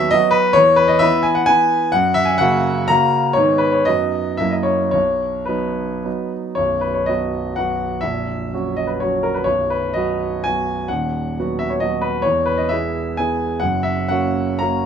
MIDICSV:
0, 0, Header, 1, 2, 480
1, 0, Start_track
1, 0, Key_signature, 5, "major"
1, 0, Tempo, 464396
1, 603, Time_signature, 3, 2, 24, 8
1, 3487, Tempo, 499168
1, 3967, Tempo, 547945
1, 5887, Tempo, 515907
1, 6847, Tempo, 478088
1, 10207, Tempo, 456274
1, 13567, Tempo, 480384
1, 14786, End_track
2, 0, Start_track
2, 0, Title_t, "Grand piano"
2, 0, Program_c, 0, 0
2, 0, Control_c, 0, 64, 127
2, 0, Note_on_c, 0, 39, 74
2, 0, Note_on_c, 0, 54, 70
2, 0, Note_on_c, 0, 59, 68
2, 0, Note_on_c, 0, 66, 75
2, 0, Note_on_c, 0, 76, 118
2, 0, Note_on_c, 0, 78, 98
2, 110, Note_on_c, 0, 75, 120
2, 117, Note_off_c, 0, 76, 0
2, 137, Note_off_c, 0, 54, 0
2, 137, Note_on_c, 0, 54, 62
2, 139, Control_c, 0, 64, 0
2, 143, Note_off_c, 0, 59, 0
2, 143, Note_on_c, 0, 59, 60
2, 144, Note_off_c, 0, 39, 0
2, 147, Note_off_c, 0, 66, 0
2, 151, Note_on_c, 0, 66, 62
2, 152, Note_off_c, 0, 78, 0
2, 318, Note_on_c, 0, 71, 105
2, 360, Note_off_c, 0, 75, 0
2, 550, Note_on_c, 0, 73, 125
2, 565, Note_off_c, 0, 54, 0
2, 568, Note_off_c, 0, 59, 0
2, 572, Note_off_c, 0, 66, 0
2, 577, Note_off_c, 0, 71, 0
2, 577, Note_on_c, 0, 40, 74
2, 789, Note_on_c, 0, 71, 95
2, 811, Note_off_c, 0, 73, 0
2, 819, Control_c, 0, 64, 127
2, 908, Note_on_c, 0, 75, 92
2, 934, Note_off_c, 0, 71, 0
2, 1024, Note_on_c, 0, 76, 114
2, 1053, Note_on_c, 0, 52, 69
2, 1054, Note_off_c, 0, 40, 0
2, 1056, Note_off_c, 0, 75, 0
2, 1058, Note_on_c, 0, 71, 76
2, 1063, Note_on_c, 0, 59, 73
2, 1092, Control_c, 0, 64, 0
2, 1268, Note_on_c, 0, 80, 90
2, 1295, Note_off_c, 0, 76, 0
2, 1394, Note_on_c, 0, 78, 87
2, 1414, Note_off_c, 0, 80, 0
2, 1505, Note_off_c, 0, 52, 0
2, 1507, Note_off_c, 0, 71, 0
2, 1509, Note_off_c, 0, 59, 0
2, 1509, Note_on_c, 0, 80, 121
2, 1535, Note_on_c, 0, 52, 56
2, 1536, Note_off_c, 0, 78, 0
2, 1538, Note_on_c, 0, 59, 60
2, 1544, Note_on_c, 0, 71, 58
2, 1974, Note_off_c, 0, 52, 0
2, 1976, Note_off_c, 0, 59, 0
2, 1979, Note_off_c, 0, 71, 0
2, 1984, Note_on_c, 0, 78, 108
2, 2003, Note_off_c, 0, 80, 0
2, 2006, Note_on_c, 0, 42, 71
2, 2192, Control_c, 0, 64, 127
2, 2215, Note_on_c, 0, 76, 110
2, 2239, Note_off_c, 0, 78, 0
2, 2328, Note_on_c, 0, 80, 82
2, 2358, Note_off_c, 0, 76, 0
2, 2459, Note_on_c, 0, 78, 112
2, 2479, Note_off_c, 0, 80, 0
2, 2481, Note_off_c, 0, 42, 0
2, 2490, Note_on_c, 0, 58, 60
2, 2491, Note_on_c, 0, 49, 65
2, 2494, Note_on_c, 0, 66, 68
2, 2956, Note_off_c, 0, 58, 0
2, 2957, Note_off_c, 0, 49, 0
2, 2958, Note_off_c, 0, 66, 0
2, 2974, Note_on_c, 0, 82, 116
2, 2982, Note_off_c, 0, 78, 0
2, 2992, Note_on_c, 0, 49, 54
2, 2997, Note_on_c, 0, 58, 52
2, 3008, Note_on_c, 0, 66, 53
2, 3014, Control_c, 0, 64, 0
2, 3439, Note_off_c, 0, 49, 0
2, 3441, Note_off_c, 0, 58, 0
2, 3446, Note_on_c, 0, 73, 99
2, 3447, Note_off_c, 0, 66, 0
2, 3471, Note_off_c, 0, 82, 0
2, 3476, Note_on_c, 0, 44, 67
2, 3481, Note_on_c, 0, 51, 48
2, 3483, Note_on_c, 0, 59, 47
2, 3488, Note_on_c, 0, 63, 45
2, 3652, Control_c, 0, 64, 127
2, 3687, Note_on_c, 0, 71, 78
2, 3698, Note_off_c, 0, 73, 0
2, 3823, Note_on_c, 0, 73, 70
2, 3825, Note_off_c, 0, 71, 0
2, 3926, Note_off_c, 0, 51, 0
2, 3927, Note_off_c, 0, 59, 0
2, 3929, Note_off_c, 0, 63, 0
2, 3948, Note_off_c, 0, 44, 0
2, 3948, Note_on_c, 0, 75, 96
2, 3959, Note_off_c, 0, 73, 0
2, 3970, Note_on_c, 0, 42, 59
2, 3970, Note_on_c, 0, 54, 46
2, 3974, Note_on_c, 0, 63, 46
2, 3978, Control_c, 0, 64, 0
2, 3979, Note_on_c, 0, 59, 46
2, 4151, Control_c, 0, 64, 127
2, 4406, Note_off_c, 0, 54, 0
2, 4407, Note_on_c, 0, 76, 87
2, 4408, Note_off_c, 0, 63, 0
2, 4411, Note_off_c, 0, 59, 0
2, 4419, Note_off_c, 0, 42, 0
2, 4431, Note_off_c, 0, 75, 0
2, 4432, Note_on_c, 0, 42, 56
2, 4435, Note_on_c, 0, 54, 41
2, 4435, Note_on_c, 0, 58, 42
2, 4445, Note_on_c, 0, 64, 41
2, 4453, Control_c, 0, 64, 0
2, 4524, Note_on_c, 0, 75, 63
2, 4542, Note_off_c, 0, 76, 0
2, 4599, Control_c, 0, 64, 127
2, 4632, Note_on_c, 0, 73, 77
2, 4660, Note_off_c, 0, 75, 0
2, 4865, Note_off_c, 0, 73, 0
2, 4875, Note_off_c, 0, 58, 0
2, 4876, Note_off_c, 0, 54, 0
2, 4878, Note_on_c, 0, 73, 79
2, 4880, Note_off_c, 0, 64, 0
2, 4895, Note_off_c, 0, 42, 0
2, 4895, Note_on_c, 0, 35, 49
2, 4927, Control_c, 0, 64, 0
2, 5122, Control_c, 0, 64, 127
2, 5353, Note_on_c, 0, 71, 60
2, 5375, Note_off_c, 0, 35, 0
2, 5379, Note_on_c, 0, 54, 42
2, 5381, Note_off_c, 0, 73, 0
2, 5384, Note_on_c, 0, 59, 44
2, 5384, Note_on_c, 0, 63, 49
2, 5842, Note_off_c, 0, 54, 0
2, 5844, Note_off_c, 0, 59, 0
2, 5844, Note_off_c, 0, 63, 0
2, 5872, Note_on_c, 0, 54, 37
2, 5874, Note_on_c, 0, 59, 38
2, 5879, Note_on_c, 0, 63, 41
2, 5895, Control_c, 0, 64, 0
2, 6114, Note_off_c, 0, 71, 0
2, 6332, Note_off_c, 0, 54, 0
2, 6333, Note_off_c, 0, 59, 0
2, 6335, Note_off_c, 0, 63, 0
2, 6339, Note_on_c, 0, 73, 83
2, 6360, Note_on_c, 0, 35, 50
2, 6364, Note_on_c, 0, 23, 46
2, 6529, Control_c, 0, 64, 127
2, 6581, Note_on_c, 0, 71, 64
2, 6589, Note_off_c, 0, 73, 0
2, 6702, Note_on_c, 0, 73, 57
2, 6713, Note_off_c, 0, 71, 0
2, 6815, Note_on_c, 0, 75, 81
2, 6835, Note_off_c, 0, 73, 0
2, 6836, Note_on_c, 0, 54, 43
2, 6841, Note_on_c, 0, 59, 42
2, 6843, Note_on_c, 0, 66, 43
2, 6863, Control_c, 0, 64, 0
2, 7285, Note_off_c, 0, 54, 0
2, 7288, Note_off_c, 0, 59, 0
2, 7289, Note_off_c, 0, 66, 0
2, 7311, Note_on_c, 0, 78, 83
2, 7314, Note_off_c, 0, 75, 0
2, 7337, Note_on_c, 0, 54, 39
2, 7337, Note_on_c, 0, 59, 41
2, 7342, Note_on_c, 0, 66, 42
2, 7742, Note_off_c, 0, 35, 0
2, 7744, Note_off_c, 0, 23, 0
2, 7754, Note_off_c, 0, 54, 0
2, 7754, Note_off_c, 0, 59, 0
2, 7756, Note_off_c, 0, 66, 0
2, 7762, Note_on_c, 0, 76, 84
2, 7781, Note_off_c, 0, 78, 0
2, 7783, Note_on_c, 0, 34, 51
2, 7785, Note_on_c, 0, 22, 46
2, 7986, Control_c, 0, 64, 127
2, 8285, Note_on_c, 0, 54, 39
2, 8293, Control_c, 0, 64, 0
2, 8294, Note_on_c, 0, 61, 39
2, 8299, Note_on_c, 0, 66, 42
2, 8522, Note_off_c, 0, 76, 0
2, 8522, Note_on_c, 0, 75, 72
2, 8629, Note_on_c, 0, 71, 53
2, 8653, Note_off_c, 0, 75, 0
2, 8742, Note_off_c, 0, 54, 0
2, 8746, Note_off_c, 0, 61, 0
2, 8749, Note_off_c, 0, 66, 0
2, 8760, Note_on_c, 0, 73, 73
2, 8764, Note_off_c, 0, 71, 0
2, 8779, Note_on_c, 0, 61, 42
2, 8784, Note_on_c, 0, 54, 39
2, 8785, Note_on_c, 0, 66, 42
2, 8990, Note_on_c, 0, 70, 70
2, 9005, Note_off_c, 0, 73, 0
2, 9104, Note_on_c, 0, 71, 57
2, 9118, Note_off_c, 0, 70, 0
2, 9201, Note_off_c, 0, 34, 0
2, 9202, Note_off_c, 0, 22, 0
2, 9202, Note_on_c, 0, 73, 77
2, 9204, Note_off_c, 0, 61, 0
2, 9206, Note_off_c, 0, 54, 0
2, 9207, Note_off_c, 0, 66, 0
2, 9224, Note_on_c, 0, 23, 46
2, 9229, Note_on_c, 0, 35, 47
2, 9231, Note_off_c, 0, 71, 0
2, 9449, Control_c, 0, 64, 127
2, 9456, Note_off_c, 0, 73, 0
2, 9464, Note_on_c, 0, 71, 63
2, 9698, Note_on_c, 0, 75, 77
2, 9714, Note_off_c, 0, 71, 0
2, 9717, Note_on_c, 0, 54, 41
2, 9732, Note_on_c, 0, 66, 43
2, 9735, Note_on_c, 0, 59, 41
2, 10164, Note_off_c, 0, 54, 0
2, 10172, Note_off_c, 0, 66, 0
2, 10173, Note_off_c, 0, 59, 0
2, 10195, Note_off_c, 0, 75, 0
2, 10201, Note_on_c, 0, 80, 88
2, 10217, Control_c, 0, 64, 0
2, 10230, Note_on_c, 0, 54, 40
2, 10238, Note_on_c, 0, 66, 42
2, 10239, Note_on_c, 0, 59, 37
2, 10635, Note_off_c, 0, 23, 0
2, 10638, Note_off_c, 0, 35, 0
2, 10658, Note_off_c, 0, 54, 0
2, 10662, Note_off_c, 0, 59, 0
2, 10662, Note_off_c, 0, 66, 0
2, 10670, Note_on_c, 0, 78, 70
2, 10683, Note_on_c, 0, 27, 46
2, 10685, Note_off_c, 0, 80, 0
2, 10693, Note_on_c, 0, 39, 48
2, 10863, Control_c, 0, 64, 127
2, 11186, Control_c, 0, 64, 0
2, 11200, Note_on_c, 0, 54, 42
2, 11210, Note_on_c, 0, 59, 39
2, 11211, Note_on_c, 0, 66, 46
2, 11412, Note_off_c, 0, 78, 0
2, 11412, Note_on_c, 0, 76, 77
2, 11528, Note_on_c, 0, 73, 58
2, 11536, Note_off_c, 0, 76, 0
2, 11629, Note_off_c, 0, 54, 0
2, 11634, Note_off_c, 0, 59, 0
2, 11634, Note_off_c, 0, 66, 0
2, 11636, Note_on_c, 0, 75, 80
2, 11652, Note_off_c, 0, 73, 0
2, 11656, Note_on_c, 0, 54, 41
2, 11659, Note_on_c, 0, 59, 39
2, 11664, Note_on_c, 0, 66, 45
2, 11860, Note_on_c, 0, 71, 74
2, 11883, Note_off_c, 0, 75, 0
2, 12078, Note_on_c, 0, 73, 88
2, 12083, Note_off_c, 0, 27, 0
2, 12084, Note_off_c, 0, 54, 0
2, 12085, Note_off_c, 0, 59, 0
2, 12088, Note_off_c, 0, 39, 0
2, 12088, Note_off_c, 0, 66, 0
2, 12110, Note_off_c, 0, 71, 0
2, 12111, Note_on_c, 0, 40, 52
2, 12115, Note_on_c, 0, 28, 47
2, 12322, Control_c, 0, 64, 127
2, 12325, Note_on_c, 0, 71, 69
2, 12338, Note_off_c, 0, 73, 0
2, 12447, Note_on_c, 0, 75, 66
2, 12467, Note_off_c, 0, 71, 0
2, 12569, Note_on_c, 0, 76, 83
2, 12593, Note_off_c, 0, 75, 0
2, 12596, Note_on_c, 0, 59, 43
2, 12605, Note_on_c, 0, 64, 41
2, 12614, Note_on_c, 0, 68, 46
2, 12623, Control_c, 0, 64, 0
2, 13054, Note_off_c, 0, 59, 0
2, 13058, Note_off_c, 0, 64, 0
2, 13063, Note_off_c, 0, 68, 0
2, 13080, Note_on_c, 0, 80, 83
2, 13083, Note_off_c, 0, 76, 0
2, 13101, Note_on_c, 0, 59, 41
2, 13106, Note_on_c, 0, 64, 42
2, 13113, Note_on_c, 0, 68, 48
2, 13515, Note_off_c, 0, 40, 0
2, 13517, Note_off_c, 0, 28, 0
2, 13522, Note_off_c, 0, 59, 0
2, 13524, Note_on_c, 0, 78, 85
2, 13525, Note_off_c, 0, 64, 0
2, 13528, Note_off_c, 0, 68, 0
2, 13550, Note_on_c, 0, 30, 46
2, 13550, Note_on_c, 0, 42, 51
2, 13553, Note_off_c, 0, 80, 0
2, 13726, Control_c, 0, 64, 127
2, 13761, Note_on_c, 0, 76, 83
2, 13772, Note_off_c, 0, 78, 0
2, 14014, Note_on_c, 0, 78, 87
2, 14020, Note_off_c, 0, 76, 0
2, 14039, Note_on_c, 0, 58, 41
2, 14042, Note_on_c, 0, 61, 43
2, 14044, Note_on_c, 0, 66, 47
2, 14495, Note_off_c, 0, 58, 0
2, 14497, Note_off_c, 0, 61, 0
2, 14498, Note_off_c, 0, 66, 0
2, 14516, Note_on_c, 0, 82, 84
2, 14523, Note_off_c, 0, 78, 0
2, 14540, Note_on_c, 0, 61, 42
2, 14544, Note_on_c, 0, 58, 44
2, 14546, Control_c, 0, 64, 0
2, 14553, Note_on_c, 0, 66, 44
2, 14786, Note_off_c, 0, 30, 0
2, 14786, Note_off_c, 0, 42, 0
2, 14786, Note_off_c, 0, 58, 0
2, 14786, Note_off_c, 0, 61, 0
2, 14786, Note_off_c, 0, 66, 0
2, 14786, Note_off_c, 0, 82, 0
2, 14786, End_track
0, 0, End_of_file